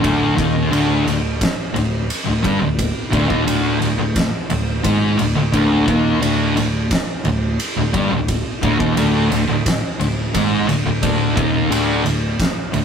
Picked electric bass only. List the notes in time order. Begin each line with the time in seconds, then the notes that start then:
0.04 D1
0.38 D#1
0.72 D1
1.06 D1
1.75 D1
2.27 D1
2.44 G1
2.61 D1
3.13 D1
3.30 D#1
3.47 D1
3.81 D1
3.98 D1
4.51 D1
4.84 G#1
5.19 D1
5.36 D1
5.53 D1
5.88 D#1
6.23 D1
6.57 D1
7.25 D1
7.76 D1
7.94 G1
8.10 D1
8.63 D1
8.80 D#1
8.97 D1
9.31 D1
9.48 D1
9.99 D1
10.35 G#1
10.68 D1
10.85 D1
11.03 D1
11.37 D#1
11.71 D1
12.05 D1
12.74 D1